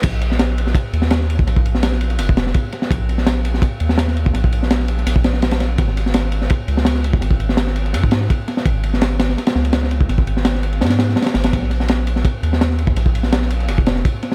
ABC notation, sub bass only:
X:1
M:4/4
L:1/8
Q:1/4=167
K:Bbm
V:1 name="Sub bass" clef=bass
B,,,4 z E,,3 | B,,,4 F,,,2 z2 | B,,,4 z E,,3 | B,,,4 B,,,4 |
A,,,4 z D,,3 | A,,,4 A,,2 z2 | A,,,4 z D,,3 | A,,,4 A,,2 z A,,, |
B,,,4 z E,,3 | B,,,4 F,,,2 z2 |]